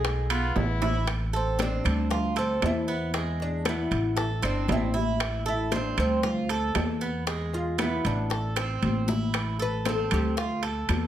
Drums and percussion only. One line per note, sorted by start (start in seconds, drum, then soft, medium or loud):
0.05 high bongo medium
0.05 high conga soft
0.05 high timbale medium
0.30 high bongo soft
0.30 high conga soft
0.30 high timbale medium
0.30 claves medium
0.56 high bongo soft
0.56 low bongo medium
0.56 high conga soft
0.56 low timbale medium
0.82 high bongo soft
0.82 high conga medium
0.82 high timbale medium
1.07 high bongo medium
1.07 high conga soft
1.07 high timbale medium
1.07 claves medium
1.33 high bongo soft
1.33 high conga soft
1.59 high bongo medium
1.59 high conga medium
1.59 high timbale medium
1.84 high bongo soft
1.84 low conga medium
1.84 high timbale medium
1.84 claves medium
2.11 high bongo medium
2.11 high conga soft
2.11 low conga medium
2.37 high bongo soft
2.37 high conga soft
2.37 high timbale medium
2.62 high bongo soft
2.62 low bongo medium
2.62 high conga medium
2.62 high timbale medium
2.62 low timbale medium
2.62 claves medium
3.14 high bongo medium
3.14 high timbale medium
3.39 high bongo soft
3.39 high conga soft
3.65 high bongo medium
3.65 high conga loud
3.65 high timbale medium
3.65 claves medium
3.92 high bongo soft
3.92 high timbale medium
4.17 high bongo medium
4.17 high conga soft
4.43 high bongo soft
4.43 high conga soft
4.43 high timbale medium
4.43 claves medium
4.68 high bongo soft
4.68 low bongo medium
4.68 high conga medium
4.68 high timbale medium
4.68 low timbale medium
4.94 high conga medium
5.20 high bongo medium
5.20 high conga soft
5.20 high timbale loud
5.20 claves medium
5.46 high bongo soft
5.46 high conga soft
5.72 high bongo medium
5.72 high conga loud
5.72 high timbale medium
5.98 high bongo soft
5.98 low conga medium
5.98 high timbale medium
5.98 claves medium
6.23 high bongo medium
6.23 high conga soft
6.23 low conga medium
6.49 high bongo soft
6.49 high conga soft
6.49 high timbale medium
6.75 high bongo soft
6.75 low bongo medium
6.75 high conga medium
6.75 high timbale medium
6.75 low timbale medium
6.75 claves medium
7.27 high bongo medium
7.27 high conga soft
7.27 high timbale medium
7.53 high bongo soft
7.53 high conga soft
7.79 high bongo medium
7.79 high conga medium
7.79 high timbale medium
7.79 claves medium
8.05 high bongo soft
8.05 high timbale medium
8.31 high bongo medium
8.31 high conga soft
8.56 high bongo medium
8.56 high conga soft
8.56 high timbale medium
8.56 claves medium
8.82 high conga medium
8.82 high timbale medium
9.08 low bongo medium
9.08 high conga medium
9.34 high bongo medium
9.34 high conga soft
9.34 high timbale medium
9.34 claves medium
9.60 high bongo soft
9.60 high conga soft
9.85 high bongo medium
9.85 high conga medium
9.85 high timbale medium
10.11 high bongo soft
10.11 low conga medium
10.11 high timbale medium
10.11 claves medium
10.37 high bongo medium
10.37 high conga soft
10.63 high bongo soft
10.63 high conga soft
10.63 high timbale medium
10.89 high bongo soft
10.89 low bongo medium
10.89 high conga medium
10.89 high timbale medium
10.89 claves medium